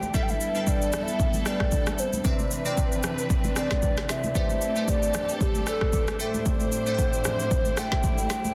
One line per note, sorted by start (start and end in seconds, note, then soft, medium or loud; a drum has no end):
0.00 0.12 A2 medium
0.00 0.12 E3 medium
0.00 0.16 A3 medium
0.00 0.10 C4 medium
0.00 0.12 D4 medium
0.00 0.10 G4 medium
0.00 0.15 A4 medium
0.00 0.16 C5 medium
0.00 0.16 D5 medium
0.00 0.16 E5 medium
0.00 0.16 F#5 medium
0.00 0.13 G5 loud
0.00 0.16 G5 medium
0.00 high conga medium
0.00 shaker soft
0.14 0.46 G3 medium
0.14 2.23 G3 medium
0.14 2.23 B3 medium
0.14 0.46 D4 medium
0.14 2.23 E4 medium
0.14 2.23 A4 medium
0.14 0.46 A4 medium
0.14 0.47 B4 medium
0.14 0.24 E5 loud
0.14 0.47 E5 medium
0.14 kick loud
0.14 low conga medium
0.14 shaker medium
0.23 0.31 G5 medium
0.28 0.69 E5 loud
0.28 high conga medium
0.28 shaker soft
0.41 shaker medium
0.55 1.28 G3 medium
0.55 1.28 D4 medium
0.55 1.28 A4 medium
0.55 1.29 B4 medium
0.55 1.29 G5 medium
0.55 shaker soft
0.67 1.04 D5 loud
0.67 kick medium
0.67 shaker medium
0.82 shaker medium
0.93 cross-stick medium
0.93 low conga medium
0.93 shaker loud
1.02 1.49 E5 loud
1.08 shaker medium
1.20 kick loud
1.20 low conga medium
1.20 shaker medium
1.33 high conga medium
1.33 shaker medium
1.45 2.10 G3 medium
1.45 2.10 D4 medium
1.45 2.10 A4 medium
1.45 2.10 B4 medium
1.45 2.01 D5 loud
1.45 2.11 G5 medium
1.45 cross-stick medium
1.45 shaker medium
1.60 kick medium
1.60 cross-stick medium
1.60 high conga medium
1.72 kick medium
1.72 low conga medium
1.72 shaker medium
1.86 cross-stick loud
1.86 high conga medium
1.86 shaker medium
1.99 2.51 C5 medium
1.99 shaker loud
2.13 high conga medium
2.13 shaker soft
2.24 2.57 C3 medium
2.24 4.33 E3 medium
2.24 2.57 C4 medium
2.24 6.15 C4 medium
2.24 4.33 D4 medium
2.24 4.33 B4 medium
2.24 2.57 B4 medium
2.24 2.57 D5 medium
2.24 2.57 E5 medium
2.24 kick loud
2.24 low conga medium
2.24 shaker medium
2.39 high conga medium
2.39 shaker soft
2.51 shaker medium
2.65 3.38 C3 medium
2.65 3.39 C4 medium
2.65 3.39 B4 medium
2.65 3.39 D5 medium
2.65 3.39 G5 medium
2.65 shaker soft
2.77 kick medium
2.77 shaker medium
2.92 shaker medium
3.03 cross-stick medium
3.03 low conga medium
3.03 shaker medium
3.18 shaker medium
3.30 kick loud
3.30 low conga medium
3.30 shaker medium
3.44 high conga medium
3.44 shaker medium
3.56 4.20 C3 medium
3.56 4.21 C4 medium
3.56 4.21 B4 medium
3.56 4.21 D5 medium
3.56 4.12 D5 loud
3.56 4.21 G5 medium
3.56 cross-stick medium
3.56 shaker medium
3.71 kick medium
3.71 cross-stick medium
3.71 snare medium
3.71 high conga medium
3.71 shaker soft
3.82 kick medium
3.82 low conga medium
3.82 shaker medium
3.97 cross-stick loud
3.97 snare medium
3.97 high conga medium
3.97 shaker medium
4.09 4.36 E5 medium
4.09 cross-stick loud
4.09 snare medium
4.09 shaker medium
4.24 high conga medium
4.24 shaker soft
4.35 4.67 A3 medium
4.35 6.17 A3 medium
4.35 8.52 D4 medium
4.35 6.17 G4 medium
4.35 4.67 G4 medium
4.35 6.18 A4 medium
4.35 4.68 B4 medium
4.35 4.68 C5 medium
4.35 4.68 D5 medium
4.35 4.91 E5 loud
4.35 kick loud
4.35 low conga medium
4.35 shaker medium
4.50 high conga medium
4.50 shaker soft
4.61 shaker medium
4.76 5.49 A3 medium
4.76 5.49 G4 medium
4.76 5.50 B4 medium
4.76 5.50 C5 medium
4.76 5.50 D5 medium
4.76 shaker soft
4.88 5.43 D5 medium
4.88 kick medium
4.88 shaker medium
5.03 shaker medium
5.14 cross-stick medium
5.14 low conga medium
5.14 shaker loud
5.29 shaker medium
5.41 5.67 G4 medium
5.41 kick loud
5.41 low conga medium
5.41 shaker medium
5.55 high conga medium
5.55 shaker medium
5.66 6.18 A3 medium
5.66 6.20 G4 medium
5.66 6.16 A4 loud
5.66 6.20 B4 medium
5.66 6.19 C5 medium
5.66 6.19 D5 medium
5.66 cross-stick medium
5.66 shaker medium
5.81 kick medium
5.81 cross-stick medium
5.81 high conga medium
5.93 kick medium
5.93 low conga medium
5.93 shaker medium
6.08 cross-stick loud
6.08 high conga medium
6.08 shaker medium
6.19 8.54 A2 medium
6.19 8.54 G3 medium
6.19 6.72 A3 medium
6.19 8.54 E4 medium
6.19 6.72 A4 medium
6.19 6.45 A4 medium
6.19 8.54 C5 medium
6.19 6.72 C5 medium
6.19 6.72 D5 medium
6.19 6.73 E5 medium
6.19 6.73 G5 medium
6.19 shaker medium
6.34 high conga medium
6.34 shaker soft
6.46 7.80 C5 loud
6.46 kick loud
6.46 low conga medium
6.46 shaker medium
6.60 high conga medium
6.60 shaker soft
6.72 shaker medium
6.86 7.60 A3 medium
6.86 7.60 A4 medium
6.86 7.60 C5 medium
6.86 7.60 D5 medium
6.86 7.60 E5 medium
6.86 6.93 F#5 medium
6.86 shaker soft
6.94 7.64 G5 medium
6.99 kick medium
6.99 shaker medium
7.13 shaker medium
7.24 cross-stick medium
7.24 low conga medium
7.24 shaker loud
7.39 shaker medium
7.51 kick loud
7.51 low conga medium
7.51 shaker medium
7.65 high conga medium
7.65 shaker medium
7.77 8.41 A3 medium
7.77 8.41 A4 medium
7.77 8.42 C5 medium
7.77 8.42 D5 medium
7.77 8.42 E5 medium
7.77 8.31 G5 loud
7.77 8.42 G5 medium
7.77 cross-stick loud
7.77 shaker medium
7.92 kick medium
7.92 snare medium
7.92 high conga medium
8.03 kick medium
8.03 low conga medium
8.03 shaker medium
8.18 high conga medium
8.18 shaker medium
8.30 8.54 G5 loud
8.30 cross-stick medium
8.30 snare medium
8.30 shaker loud
8.45 high conga medium
8.45 shaker soft